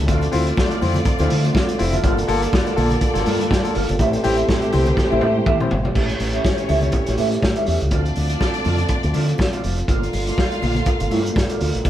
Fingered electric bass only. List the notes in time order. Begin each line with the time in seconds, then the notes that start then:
0.09 D2
0.33 D2
0.82 F2
1.20 D2
1.31 D3
1.80 F1
2.04 G1
2.28 G1
2.78 A#1
3.16 G1
3.27 G2
3.51 G2
3.76 G1
3.90 G1
4.00 A1
4.25 A1
4.74 C2
5.12 A1
5.23 A2
5.72 G1
5.96 A1
6.20 A1
6.70 C#2
7.08 A1
7.19 A2
7.43 A2
7.68 E2
7.82 C#2
7.92 D2
8.17 D2
8.66 F2
9.04 D2
9.15 D3
9.64 F1
9.89 G1
10.13 G1
10.63 A#1
11.01 G1
11.12 G2
11.36 G2
11.61 D2
11.75 A1
11.85 A#1